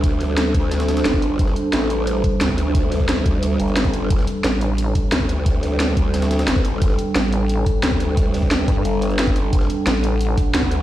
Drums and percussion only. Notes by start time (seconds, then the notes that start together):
0.04 kick, closed hi-hat
0.21 snare, closed hi-hat, open hi-hat
0.38 snare, closed hi-hat
0.54 kick, closed hi-hat
0.71 snare, closed hi-hat
0.80 snare, closed hi-hat
0.88 snare, closed hi-hat
0.97 snare, closed hi-hat
1.05 snare, closed hi-hat
1.14 kick, snare
1.22 closed hi-hat
1.39 kick, closed hi-hat
1.48 snare
1.56 closed hi-hat
1.73 snare, closed hi-hat
1.90 closed hi-hat
2.07 closed hi-hat
2.24 kick, closed hi-hat
2.41 snare, closed hi-hat
2.49 kick
2.58 closed hi-hat
2.75 kick, closed hi-hat
2.92 snare, closed hi-hat, open hi-hat
3.00 kick
3.09 snare, closed hi-hat
3.17 snare
3.26 kick, closed hi-hat
3.43 closed hi-hat
3.60 closed hi-hat
3.68 closed hi-hat
3.77 snare, closed hi-hat
3.85 kick, snare
3.94 closed hi-hat
4.10 kick, closed hi-hat
4.19 snare
4.27 closed hi-hat
4.44 snare, closed hi-hat
4.61 closed hi-hat
4.78 closed hi-hat
4.95 kick, closed hi-hat
5.12 snare, closed hi-hat
5.21 kick
5.29 closed hi-hat
5.46 kick, closed hi-hat
5.63 snare, closed hi-hat, open hi-hat
5.80 snare, closed hi-hat
5.97 kick, closed hi-hat
6.14 snare, closed hi-hat
6.22 snare, closed hi-hat
6.31 snare, closed hi-hat
6.39 snare, closed hi-hat
6.48 snare, closed hi-hat
6.56 kick, snare
6.65 closed hi-hat
6.82 kick, closed hi-hat
6.90 snare
6.99 closed hi-hat
7.16 snare, closed hi-hat
7.32 closed hi-hat
7.49 closed hi-hat
7.66 kick, closed hi-hat
7.83 snare, closed hi-hat
7.92 kick
8.00 closed hi-hat
8.17 kick, closed hi-hat
8.34 snare, closed hi-hat, open hi-hat
8.43 kick
8.51 snare, closed hi-hat
8.68 kick, closed hi-hat
8.85 closed hi-hat
9.02 closed hi-hat
9.10 closed hi-hat
9.19 snare, closed hi-hat
9.27 kick, snare
9.36 closed hi-hat
9.53 kick, closed hi-hat
9.61 snare
9.70 closed hi-hat
9.87 snare, closed hi-hat
10.04 closed hi-hat
10.21 closed hi-hat
10.38 kick, closed hi-hat
10.55 snare, closed hi-hat
10.63 kick
10.71 closed hi-hat